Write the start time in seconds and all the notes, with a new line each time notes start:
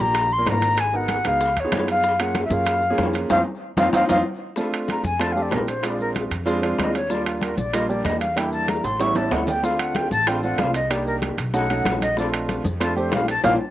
0.00 A#1 A#3 D4 F4 G4 A#5
0.14 high bongo, high conga, high timbale, maracas
0.30 C6, high conga, maracas
0.38 A#3 D4 F4 A#4
0.46 G#1 A#5, high bongo, low bongo, high conga, high timbale, low timbale, maracas
0.61 high bongo, high conga, high timbale, maracas
0.77 G#5, high bongo, high conga, high timbale, maracas
0.93 B3 D#4 F#4 A#4 F#5, high bongo, high conga, maracas
1.08 high bongo, high conga, high timbale, maracas
1.24 C#2 B3 D#4 F#4 G#4 F5, high bongo, high conga, high timbale, maracas
1.40 high bongo, high conga, maracas
1.56 D#2 C#5, high conga, high timbale, maracas
1.64 B3 D#4 F4 G#4
1.72 F#2, high bongo, low bongo, high conga, high timbale, low timbale, maracas
1.88 F5, high bongo, high timbale, maracas
2.03 high bongo, high conga, maracas
2.19 A#3 C#4 F4 G#4 F#5, high bongo, high conga, high timbale, maracas
2.35 high bongo, high conga, high timbale, maracas
2.45 E5
2.50 F#2 A#3 C#4 F4 G#4 F5, high bongo, high conga, maracas
2.66 high bongo, high conga, high timbale, maracas
2.82 high conga, maracas
2.90 A#3 C#4 F4 G#4
2.98 F2, high bongo, low bongo, high conga, high timbale, maracas
3.14 high bongo, high conga, high timbale, maracas
3.30 F2 C4 D#4 F4 F5, low bongo, high conga, high timbale, maracas
3.77 F2 C4 D#4 F4 F5, low bongo, high conga, high timbale, maracas
3.93 F2 C4 D#4 F4 F5, low bongo, high conga, high timbale, maracas
4.09 F2 C4 D#4 F4 F5, low bongo, high conga, high timbale, maracas
4.56 A3 C4 D4 F4, high bongo, high conga, maracas
4.72 high bongo, high conga, high timbale, maracas
4.88 A#5, high bongo, high conga, high timbale, maracas
5.03 F2 G#5, high bongo, high conga, maracas
5.19 A3 C4 D4 F4 A5, high bongo, high conga, high timbale, maracas
5.32 A3 C4 D4 G4 F5, high conga
5.37 maracas
5.42 D5
5.51 A#1 A#4, high bongo, low bongo, high conga, high timbale, low timbale, maracas
5.68 C5, high bongo, high conga, high timbale, maracas
5.83 G#3 C4 D4 F4 D5, high bongo, high conga, high timbale, maracas
5.99 A#4, high bongo, high conga, maracas
6.15 high bongo, high conga, high timbale, maracas
6.31 F2, high bongo, high conga, high timbale, maracas
6.46 G#3 C4 D4 F4, high bongo, high conga, maracas
6.62 G#3 C4 D4 F4, high conga, high timbale, maracas
6.79 D#2 D#5, high bongo, low bongo, high conga, high timbale, maracas
6.94 C#5, high bongo, high timbale, maracas
7.10 G3 A#3 D4 F4 D5, high bongo, high conga, maracas
7.26 F4, high bongo, high conga, high timbale, maracas
7.41 A#4, high bongo, high conga, high timbale, maracas
7.57 A#1 D5, high bongo, high conga, maracas
7.73 G3 A#3 D4 F4 D#5, high bongo, high conga, high timbale, maracas
7.89 G3 A#3 D4 G4 D5, high conga, maracas
8.04 E2 D#5, high bongo, low bongo, high conga, high timbale, maracas
8.20 F5, high bongo, high conga, high timbale, maracas
8.36 G3 A#3 D4 E4 G5, high bongo, high conga, high timbale, maracas
8.52 A5, high bongo, high conga, maracas
8.68 A#5, high bongo, high conga, high timbale, maracas
8.84 A1 C6, high bongo, high conga, high timbale, maracas
9.00 G3 B3 C#4 E4 C#6, high bongo, high conga, high timbale, maracas
9.15 G3 B3 C#4 E4 A5, high conga, high timbale, maracas
9.31 D2 F#5, high bongo, low bongo, low timbale, maracas
9.47 G5, high bongo, low conga, low timbale, maracas
9.62 A3 C4 D4 F4 F5, high bongo, high conga, maracas
9.79 F#5, high bongo, high conga, high timbale, maracas
9.95 G5, high bongo, high conga, high timbale, maracas
10.11 A1 A5, high bongo, high conga, maracas
10.27 A3 C4 D4 F4 G5, high bongo, high conga, high timbale, maracas
10.43 A3 C4 D4 F4 F#5, high conga, maracas
10.58 C2 F5, high bongo, low bongo, high conga, high timbale, low timbale, maracas
10.74 D#5, high bongo, high conga, high timbale, maracas
10.90 A#3 D4 D#4 G4 D5, high bongo, high conga, high timbale, maracas
11.06 A#4, high bongo, high conga, maracas
11.22 high bongo, high conga, high timbale, maracas
11.38 B1, high bongo, high conga, high timbale, maracas
11.54 A3 C#4 D#4 F#4 F#5, high bongo, high conga, maracas
11.69 A3 C#4 D#4 F#4, high conga, high timbale, maracas
11.85 A#1, high bongo, low bongo, high conga, high timbale, maracas
12.01 D#5, high bongo, high conga, high timbale, maracas
12.17 A3 C4 D4 F4 D5, high bongo, maracas
12.33 high bongo, high conga, high timbale, maracas
12.49 high bongo, high conga, high timbale, maracas
12.64 F2, high bongo, high conga, maracas
12.80 A3 C4 D4 F4 A5, high bongo, high conga, high timbale, maracas
12.96 A3 C4 D4 G4 C5, high conga, maracas
13.12 A#1 F5, high bongo, low bongo, high conga, high timbale, maracas
13.28 A5, high bongo, high conga, high timbale, maracas
13.44 A#1 A#3 D4 F4 F5, low bongo, high conga, high timbale, maracas